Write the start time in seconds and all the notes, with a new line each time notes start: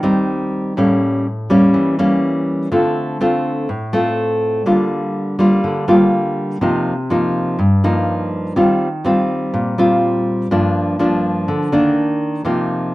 Already playing: D#3
0.03 G3 C4 D#4
0.77 A2 G3 A#3 C#4
1.50 G3 A#3 C#4
1.74 E3
1.99 G3 A#3 C#4
2.72 D3 A3 C4 F4
3.21 A3 C4 F4
3.69 A2
3.93 A3 C4 F4
4.66 D3 G3 A#3 F4
5.39 G3 A#3 F4
5.64 D3
5.88 G3 A#3 F4
6.61 C3 F3 A#3 D#4
7.10 F3 A#3 D#4
7.59 G2
7.84 F3 A#3 D#4
8.56 D#3 G3 C4 F4
9.05 G3 C4 F4
9.54 A#2
9.78 G3 C4 F4
10.51 G2 F3 A#3 D4
10.99 F3 A#3 D4
11.48 D3
11.72 D#3 A#3 D4
12.45 C3 F3 A#3 D#4